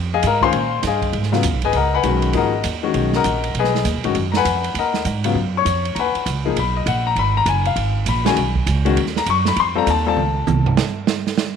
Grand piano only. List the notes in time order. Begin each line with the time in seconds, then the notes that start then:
0.14 G#4 D#5 F5 G#5
0.27 A#4 D#5 F5 A#5
0.42 D#3 G#3 C#4 F4 C5 F5 G#5 C6
0.87 G#4 D#5 F5 G#5
1.32 C#3 F#3 B3 F4
1.65 G#4 B4 D#5 G#5
1.76 A#4 D#5 F#5 A#5
1.94 B4 F#5 G#5 B5
2.03 D#3 G#3 C#4 F#4
2.34 F3 A#3 D#4 G#4 A#4 D#5 F#5 A#5
2.83 D#3 G#3 C#4 F#4
3.16 A#4 D#5 F#5 A#5
3.59 G#4 B4 D#5 G#5
4.04 D#3 G#3 C#4 F#4
4.37 B4 F#5 G#5 B5
4.79 A#4 D#5 F#5 A#5
5.25 C#3 F#3 B3 F4
5.57 C#5 C#6
5.95 A#5
5.99 B4 F#5 G#5 B5
6.45 F3 A#3 D#4 G#4
6.59 B5
6.77 D#5
6.88 F#5
7.07 A#5
7.19 B5
7.37 A#5
7.49 G#5
7.66 F5
8.09 B5
8.25 D#3 G#3 C#4 F#4 G#5
8.85 D#3 G#3 C#4 F#4
9.17 A#5
9.30 C#6
9.48 B5
9.60 C6
9.75 G3 C4 F4 A4 A#5
9.90 A5
10.06 G3 C4 F4 A4 A5